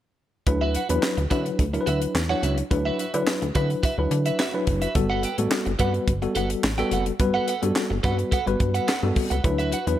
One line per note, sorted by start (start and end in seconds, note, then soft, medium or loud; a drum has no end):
0.47 0.77 D2 loud
0.47 0.79 F#3 medium
0.47 0.79 D4 medium
0.47 0.80 E4 medium
0.47 0.80 B4 medium
0.47 muted clean electric guitar stroke soft
0.47 kick loud
0.47 closed hi-hat medium
0.61 0.73 F#4 medium
0.61 0.74 B4 medium
0.61 0.76 E5 medium
0.74 0.89 F#4 medium
0.74 0.89 B4 medium
0.74 0.89 F#5 medium
0.74 closed hi-hat medium
0.89 0.99 E2 loud
0.89 1.22 F#3 medium
0.89 1.22 D4 medium
0.89 1.22 E4 medium
0.89 1.22 B4 medium
0.89 muted clean electric guitar stroke medium
0.89 closed hi-hat medium
1.03 muted clean electric guitar stroke soft
1.03 snare loud
1.03 clap medium
1.17 1.27 D2 medium
1.17 muted clean electric guitar stroke soft
1.17 closed hi-hat soft
1.30 1.51 D3 medium
1.30 1.63 F#3 medium
1.30 1.64 D4 medium
1.30 1.64 E4 medium
1.30 1.48 F#4 medium
1.30 1.45 B4 medium
1.30 1.64 B4 medium
1.30 1.44 E5 medium
1.30 kick medium
1.30 closed hi-hat medium
1.45 muted clean electric guitar stroke soft
1.45 closed hi-hat soft
1.59 1.79 D2 medium
1.59 kick loud
1.59 closed hi-hat medium
1.73 2.16 F#3 medium
1.73 2.16 D4 medium
1.73 2.16 E4 medium
1.73 1.80 A#4 medium
1.73 muted clean electric guitar stroke soft
1.73 closed hi-hat soft
1.81 2.20 B4 medium
1.86 2.07 D2 medium
1.86 2.04 F#4 medium
1.86 2.02 B4 medium
1.86 2.00 E5 medium
1.86 closed hi-hat medium
2.02 muted clean electric guitar stroke soft
2.02 closed hi-hat medium
2.15 2.35 E2 medium
2.15 muted clean electric guitar stroke soft
2.15 snare loud
2.15 clap medium
2.29 2.62 F#3 medium
2.29 2.62 D4 medium
2.29 2.62 E4 medium
2.29 2.41 F#4 medium
2.29 2.42 B4 medium
2.29 2.62 C#5 medium
2.29 2.44 F#5 medium
2.43 2.63 C#2 medium
2.43 2.57 F#4 medium
2.43 2.57 B4 medium
2.43 2.56 E5 medium
2.43 closed hi-hat medium
2.58 muted clean electric guitar stroke soft
2.58 closed hi-hat soft
2.71 2.91 D2 loud
2.71 3.04 F#3 medium
2.71 3.04 D4 medium
2.71 3.04 E4 medium
2.71 3.04 B4 medium
2.71 muted clean electric guitar stroke soft
2.71 kick loud
2.71 closed hi-hat medium
2.85 2.97 F#4 medium
2.85 2.98 B4 medium
2.85 2.99 E5 medium
2.99 3.13 F#4 medium
2.99 3.13 B4 medium
2.99 3.12 E5 medium
2.99 closed hi-hat medium
3.14 3.23 D3 loud
3.14 3.46 F#3 medium
3.14 3.46 D4 medium
3.14 3.46 E4 medium
3.14 3.46 B4 loud
3.14 muted clean electric guitar stroke soft
3.14 closed hi-hat medium
3.27 muted clean electric guitar stroke soft
3.27 snare loud
3.27 clap medium
3.42 3.51 D2 loud
3.42 muted clean electric guitar stroke soft
3.42 closed hi-hat soft
3.55 3.75 D3 medium
3.55 3.88 F#3 medium
3.55 3.88 D4 medium
3.55 3.88 E4 medium
3.55 3.73 F#4 medium
3.55 3.70 B4 medium
3.55 3.88 B4 loud
3.55 3.69 E5 medium
3.55 kick loud
3.55 closed hi-hat medium
3.70 muted clean electric guitar stroke medium
3.70 closed hi-hat soft
3.83 4.01 F#4 medium
3.83 3.98 B4 medium
3.83 3.97 E5 medium
3.83 kick loud
3.83 closed hi-hat medium
3.98 4.07 D2 loud
3.98 4.41 F#3 medium
3.98 4.41 D4 medium
3.98 4.41 E4 medium
3.98 4.41 B4 medium
3.98 muted clean electric guitar stroke soft
4.11 4.31 D3 medium
4.11 muted clean electric guitar stroke soft
4.11 closed hi-hat medium
4.26 4.38 F#4 soft
4.26 4.39 B4 medium
4.26 4.38 E5 medium
4.26 closed hi-hat medium
4.39 4.57 F#4 medium
4.39 4.54 B4 loud
4.39 4.53 E5 loud
4.39 snare loud
4.39 clap medium
4.54 4.86 F#3 medium
4.54 4.86 D4 medium
4.54 4.86 E4 medium
4.54 4.87 B4 medium
4.54 muted clean electric guitar stroke soft
4.67 4.87 F#1 medium
4.67 muted clean electric guitar stroke soft
4.67 kick medium
4.67 closed hi-hat medium
4.82 4.95 F#4 soft
4.82 4.95 B4 medium
4.82 4.94 E5 medium
4.82 closed hi-hat medium
4.95 5.26 G1 loud
4.95 5.28 G3 medium
4.95 5.28 B3 medium
4.95 5.28 F#4 medium
4.95 5.28 A4 medium
4.95 muted clean electric guitar stroke soft
4.95 kick loud
4.95 closed hi-hat medium
5.10 5.22 A4 medium
5.10 5.23 B4 medium
5.10 5.24 F#5 medium
5.23 5.37 A4 medium
5.23 5.38 B4 medium
5.23 5.38 G5 medium
5.23 closed hi-hat medium
5.38 5.48 A1 medium
5.38 5.70 G3 medium
5.38 5.70 B3 medium
5.38 5.71 F#4 medium
5.38 5.71 A4 medium
5.38 muted clean electric guitar stroke soft
5.38 closed hi-hat medium
5.51 muted clean electric guitar stroke soft
5.51 snare loud
5.51 clap medium
5.66 5.76 G1 loud
5.66 muted clean electric guitar stroke soft
5.66 closed hi-hat soft
5.79 6.00 G2 loud
5.79 6.12 G3 medium
5.79 6.12 B3 medium
5.79 6.12 F#4 medium
5.79 5.97 A4 medium
5.79 5.94 B4 medium
5.79 6.12 B4 medium
5.79 5.93 F#5 medium
5.79 kick loud
5.79 closed hi-hat medium
5.94 muted clean electric guitar stroke soft
5.94 closed hi-hat soft
6.08 6.28 G1 medium
6.08 kick loud
6.08 closed hi-hat medium
6.22 6.65 G3 medium
6.22 6.65 B3 medium
6.22 6.65 F#4 medium
6.22 6.65 A4 medium
6.22 muted clean electric guitar stroke soft
6.22 closed hi-hat soft
6.35 6.56 G1 medium
6.35 6.53 A4 medium
6.35 6.50 B4 medium
6.35 6.49 F#5 loud
6.35 closed hi-hat medium
6.50 muted clean electric guitar stroke medium
6.50 closed hi-hat medium
6.63 6.84 A1 medium
6.63 muted clean electric guitar stroke soft
6.63 snare loud
6.63 clap medium
6.78 7.11 G3 medium
6.78 7.11 B3 medium
6.78 7.11 F#4 medium
6.78 7.11 A4 loud
6.78 6.90 A4 medium
6.78 6.91 B4 medium
6.78 6.93 G5 medium
6.78 closed hi-hat soft
6.91 7.12 F#1 medium
6.91 7.06 A4 medium
6.91 7.06 B4 medium
6.91 7.05 F#5 medium
6.91 closed hi-hat medium
7.06 muted clean electric guitar stroke soft
7.06 closed hi-hat soft
7.19 7.40 G1 loud
7.19 7.52 G3 medium
7.19 7.52 B3 medium
7.19 7.53 F#4 medium
7.19 7.53 B4 medium
7.19 muted clean electric guitar stroke soft
7.19 kick loud
7.19 closed hi-hat medium
7.34 7.46 A4 medium
7.34 7.47 B4 medium
7.34 7.48 F#5 medium
7.47 7.62 A4 medium
7.47 7.62 B4 medium
7.47 7.61 F#5 medium
7.47 closed hi-hat medium
7.62 7.72 G2 loud
7.62 7.95 G3 medium
7.62 7.95 B3 medium
7.62 7.95 F#4 medium
7.62 7.95 A4 medium
7.62 muted clean electric guitar stroke soft
7.62 closed hi-hat medium
7.75 muted clean electric guitar stroke soft
7.75 snare loud
7.75 clap medium
7.90 8.00 G1 medium
7.90 muted clean electric guitar stroke soft
8.03 8.24 G2 loud
8.03 8.36 G3 medium
8.03 8.37 B3 medium
8.03 8.37 F#4 medium
8.03 8.21 A4 medium
8.03 8.19 B4 medium
8.03 8.37 B4 medium
8.03 8.17 F#5 medium
8.03 kick loud
8.03 closed hi-hat medium
8.18 muted clean electric guitar stroke medium
8.18 closed hi-hat soft
8.31 8.49 A4 medium
8.31 8.47 B4 loud
8.31 8.45 F#5 loud
8.31 kick loud
8.31 closed hi-hat medium
8.46 8.56 G1 loud
8.46 8.89 G3 medium
8.46 8.89 B3 medium
8.46 8.89 F#4 medium
8.46 8.90 B4 medium
8.46 muted clean electric guitar stroke soft
8.46 closed hi-hat soft
8.60 8.80 G2 medium
8.60 muted clean electric guitar stroke soft
8.60 kick loud
8.60 closed hi-hat medium
8.74 8.86 A4 soft
8.74 8.87 B4 medium
8.74 8.87 F#5 medium
8.74 closed hi-hat medium
8.88 9.05 A4 medium
8.88 9.03 B4 medium
8.88 9.01 F#5 medium
8.88 snare loud
8.88 clap medium
9.03 9.12 G2 loud
9.03 9.35 G3 medium
9.03 9.35 B3 medium
9.03 9.35 F#4 medium
9.03 9.35 A4 medium
9.03 muted clean electric guitar stroke soft
9.16 muted clean electric guitar stroke soft
9.16 kick medium
9.16 open hi-hat medium
9.30 9.40 C#2 medium
9.30 9.43 A4 soft
9.30 9.44 B4 medium
9.30 9.43 F#5 medium
9.30 closed hi-hat soft
9.44 9.75 D2 loud
9.44 9.77 F#3 medium
9.44 9.77 D4 medium
9.44 9.77 E4 medium
9.44 9.77 B4 medium
9.44 muted clean electric guitar stroke soft
9.44 kick loud
9.44 closed hi-hat medium
9.59 9.70 F#4 medium
9.59 9.72 B4 medium
9.59 9.73 E5 medium
9.59 closed hi-hat soft
9.72 9.86 F#4 medium
9.72 9.87 B4 medium
9.72 9.87 F#5 medium
9.72 closed hi-hat medium
9.87 9.96 E2 medium
9.87 9.99 F#3 medium
9.87 9.99 D4 medium
9.87 9.99 E4 medium
9.87 9.99 B4 medium
9.87 muted clean electric guitar stroke soft
9.87 closed hi-hat medium